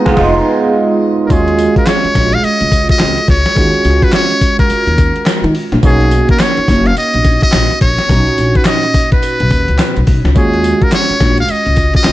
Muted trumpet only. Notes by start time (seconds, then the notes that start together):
1.26 A#4
1.32 G#4
1.78 A#4
1.88 C#5
2.34 F5
2.44 D#5
2.91 D#5
3.30 C#5
4.04 B4
4.14 C#5
4.60 A#4
5.86 G#4
6.31 A#4
6.42 C#5
6.87 F5
6.98 D#5
7.43 D#5
7.82 C#5
8.57 B4
8.67 D#5
9.13 B4
10.38 G#4
10.83 A#4
10.95 C#5
11.40 F5
11.51 D#5
11.97 D#5